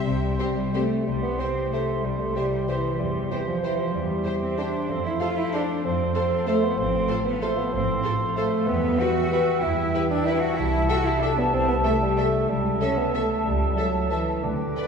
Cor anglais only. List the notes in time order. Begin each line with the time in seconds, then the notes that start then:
Already playing: C5
1.08 C5
1.41 C5
2.06 C5
2.37 C5
2.71 C5
3.01 C5
3.65 C5
3.96 C5
4.89 C5
5.22 C5
5.85 C5
6.15 C5
6.47 C5
6.78 C5
7.41 C5
7.74 C5
8.37 C5
8.68 E5
10.57 E5
12.48 E5
14.43 D5